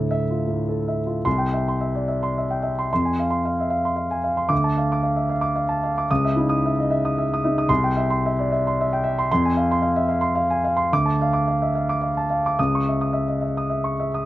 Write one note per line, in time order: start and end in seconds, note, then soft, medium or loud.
0.00 1.21 D2 soft
0.00 0.48 A2 soft
0.00 0.24 A4 soft
0.11 0.42 E5 medium
0.30 0.61 F4 soft
0.48 0.79 A2 soft
0.69 0.99 A4 soft
0.88 1.18 E5 soft
1.06 1.25 F4 soft
1.25 2.86 C2 medium
1.25 1.48 C6 medium
1.38 1.61 G5 soft
1.53 1.76 E5 soft
1.68 1.90 C6 soft
1.81 2.03 E5 soft
1.95 2.09 D5 soft
2.08 2.30 E5 soft
2.23 2.44 C6 soft
2.38 2.59 E5 soft
2.51 2.72 G5 soft
2.63 2.85 E5 soft
2.79 2.91 C6 soft
2.93 4.49 F2 soft
2.93 3.13 C6 medium
3.05 3.26 G#5 soft
3.19 3.40 F5 soft
3.30 3.52 C6 soft
3.45 3.66 F5 soft
3.60 3.72 E5 soft
3.70 3.92 F5 soft
3.85 4.06 C6 soft
3.96 4.18 F5 soft
4.11 4.32 G#5 soft
4.24 4.45 F5 soft
4.37 4.51 C6 soft
4.49 6.05 D2 medium
4.49 4.71 D6 medium
4.64 4.85 A5 soft
4.77 4.99 F5 soft
4.92 5.13 D6 soft
5.03 5.25 F5 soft
5.16 5.30 E5 soft
5.29 5.51 F5 soft
5.41 5.64 D6 medium
5.56 5.77 F5 soft
5.69 5.91 A5 soft
5.83 6.05 F5 soft
5.98 6.11 D6 soft
6.11 7.65 C#2 medium
6.11 6.31 D#6 medium
6.25 6.45 E5 soft
6.36 6.79 D#4 soft
6.36 6.58 E4 soft
6.49 6.71 D#6 medium
6.66 6.86 E5 soft
6.80 6.91 D#5 soft
6.91 7.11 E5 soft
7.05 7.25 D#6 soft
7.18 7.38 E5 medium
7.34 7.53 D#6 soft
7.44 7.70 D#4 soft
7.44 7.65 E5 soft
7.58 7.70 D#6 medium
7.68 9.25 C2 medium
7.68 7.90 C6 medium
7.84 8.04 G5 medium
7.97 8.17 E5 soft
8.10 8.31 C6 medium
8.26 8.45 E5 medium
8.39 8.51 D5 soft
8.52 8.72 E5 soft
8.67 8.86 C6 soft
8.81 9.00 E5 medium
8.93 9.13 G5 medium
9.04 9.25 E5 medium
9.19 9.30 C6 medium
9.32 10.88 F2 medium
9.32 9.52 C6 medium
9.45 9.66 G#5 medium
9.57 9.78 F5 soft
9.71 9.92 C6 medium
9.82 10.04 F5 medium
9.96 10.10 E5 soft
10.09 10.31 F5 medium
10.21 10.44 C6 medium
10.35 10.58 F5 medium
10.50 10.72 G#5 medium
10.64 10.86 F5 medium
10.77 10.90 C6 medium
10.93 12.55 D2 medium
10.93 11.13 D6 medium
11.06 11.27 A5 soft
11.21 11.41 F5 medium
11.33 11.54 D6 soft
11.48 11.68 F5 soft
11.62 11.74 E5 soft
11.75 11.96 F5 medium
11.89 12.11 D6 medium
12.02 12.24 F5 soft
12.17 12.39 A5 soft
12.30 12.52 F5 soft
12.46 12.59 D6 soft
12.59 14.25 C#2 medium
12.59 12.81 D#6 medium
12.75 12.97 C#6 soft
12.88 13.10 E5 soft
13.01 13.24 D#6 soft
13.13 13.37 E5 soft
13.28 13.43 D#5 soft
13.42 13.65 E5 soft
13.57 13.80 D#6 soft
13.70 13.93 E5 soft
13.84 14.08 C#6 soft
14.00 14.23 E5 soft
14.14 14.25 D#6 soft